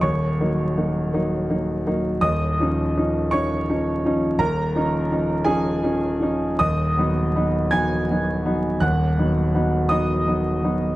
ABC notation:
X:1
M:6/8
L:1/8
Q:3/8=55
K:Dbmix
V:1 name="Grand piano"
[dd']4- [dd'] z | [ee']3 [dd']3 | [Bb]3 [Aa]3 | [^d^d']3 [aa']3 |
[^f^f']3 [^d^d']3 |]
V:2 name="Grand piano"
[E,,,E,,] [G,B,E] [G,B,E] [G,B,E] [G,B,E] [G,B,E] | [E,,,E,,] [F,DE] [F,DE] [F,DE] [F,DE] [F,DE] | [E,,,E,,] [F,DE] [F,DE] [F,DE] [F,DE] [F,DE] | [^D,,,^D,,] [^F,=B,^D] [F,B,D] [F,B,D] [F,B,D] [F,B,D] |
[^D,,,^D,,] [^F,=B,^D] [F,B,D] [F,B,D] [F,B,D] [F,B,D] |]